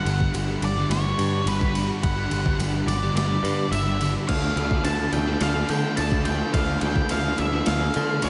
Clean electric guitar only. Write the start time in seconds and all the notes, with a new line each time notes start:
4.28 D3 F3 A3 B3 A4
4.56 F3 A3 B3 A4
4.84 D3 F3 A3 B3 A4
4.98 A3 B3 A4
5.13 F3 A3 B3 A4
5.27 A3 B3 A4
5.55 A3 B3 A4
5.69 F3 A3 B3 A4
5.97 D3 F3 A3 B3 A4
6.13 muted clean electric guitar stroke
6.26 F3 A3 B3 A4
6.40 A3 B3 A4
6.54 D3 F3 A3 B3 A4
6.82 F3 A3 B3 A4
7.10 D3 F3 A3 B3 A4
7.24 A3 B3 A4
7.38 F3 A3 B3 A4
7.52 A3 B3 A4
7.81 A3 B3 A4
7.94 F3 A3 B3 A4
8.21 D3 F3 A3 B3 A4